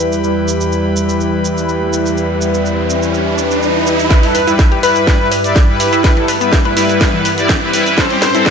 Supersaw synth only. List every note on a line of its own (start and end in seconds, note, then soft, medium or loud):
0.00 0.21 G3 medium
0.00 0.21 E4 medium
0.00 0.21 B4 medium
0.23 4.08 G3 medium
0.23 4.08 E4 medium
0.23 4.08 B4 medium
4.11 4.20 G3 medium
4.11 4.19 E4 medium
4.11 4.20 B4 medium
4.23 4.31 G3 medium
4.23 4.31 E4 medium
4.23 4.31 A4 medium
4.47 4.60 G3 medium
4.47 4.60 E4 medium
4.47 4.60 B4 medium
4.72 4.80 G3 medium
4.72 4.80 E4 medium
4.72 4.80 B4 medium
4.83 5.05 G3 loud
4.83 5.05 E4 medium
4.83 5.05 B4 loud
5.07 5.18 G3 loud
5.07 5.18 E4 medium
5.07 5.18 B4 loud
5.20 5.28 G3 medium
5.20 5.28 E4 medium
5.20 5.28 B4 loud
5.44 5.57 G3 medium
5.44 5.57 E4 medium
5.44 5.57 D5 loud
5.68 5.77 G3 medium
5.68 5.77 E4 medium
5.68 5.77 B4 loud
5.80 6.01 G3 loud
5.80 6.01 E4 medium
5.80 6.01 B4 loud
6.04 6.13 E4 medium
6.04 6.13 B4 loud
6.17 6.25 G3 medium
6.17 6.25 E4 medium
6.17 6.25 A4 medium
6.41 6.54 G3 medium
6.41 6.54 E4 medium
6.41 6.54 B4 medium
6.65 6.73 G3 medium
6.65 6.73 E4 medium
6.65 6.73 B4 medium
6.77 6.98 G3 loud
6.77 6.98 E4 medium
6.77 6.98 B4 loud
7.01 7.12 G3 loud
7.01 7.12 E4 medium
7.01 7.12 B4 loud
7.14 7.22 G3 medium
7.14 7.22 E4 medium
7.14 7.22 B4 loud
7.38 7.51 G3 medium
7.38 7.51 E4 medium
7.38 7.51 D5 loud
7.62 7.71 G3 medium
7.62 7.71 E4 medium
7.62 7.71 B4 loud
7.73 7.95 G3 loud
7.73 7.95 E4 medium
7.73 7.95 B4 loud
7.98 8.07 G3 medium
7.98 8.07 C4 medium
7.98 8.07 A4 medium
8.10 8.18 G3 medium
8.10 8.18 C4 medium
8.10 8.18 G4 loud
8.35 8.48 G3 medium
8.35 8.48 C4 medium
8.35 8.48 A4 medium